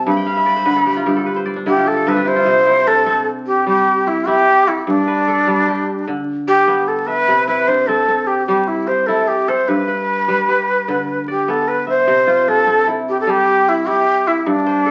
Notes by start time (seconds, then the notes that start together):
Already playing: C3 G3 E4 G4
0.07 G2 B5
0.17 G5
0.26 F5
0.36 E5
0.46 D5
0.56 C5
0.65 D3 B4
0.76 A4
0.86 G4
0.97 F4
1.06 G2 G4
1.16 A4
1.26 B4
1.36 C5
1.46 D5
1.56 D4
1.66 D3 E4 G4
1.76 F4
1.86 G4 A4
1.96 A4
2.07 G2 C4 B4
2.16 D4
2.25 E4 C5
2.36 F4
2.46 C3
2.66 E4
2.86 D4 A4
3.06 C4
3.47 G4
3.66 G3 G4
4.07 E4 G4
4.27 E4 G4
4.67 E4 A4
4.87 G2 D4
5.07 B4
5.28 A4
5.47 G3
5.68 G4
6.08 D3
6.47 G4 D5
6.67 B3
6.88 A4
7.07 B4 E5
7.28 C3
7.47 E4 B4
7.68 D4 C5
7.87 C4 A4
8.08 C4
8.27 G4
8.47 G3 G4
8.68 E4
8.87 G4 C5
9.06 E4 A4
9.28 G4
9.48 A4 C5
9.68 G2 B4
9.88 B4
10.28 G3
10.49 G4
10.88 D3
11.28 G4 D5
11.48 B3 A4
11.68 B4
11.87 C5 E5
12.07 C3
12.27 F4
12.47 D4 A4
12.67 C4
12.87 E4
13.09 G4
13.20 A4
13.27 G3 G4
13.69 E4
13.87 E4 G4
14.27 E4
14.39 E4
14.46 G2 D4
14.66 C5
14.86 A4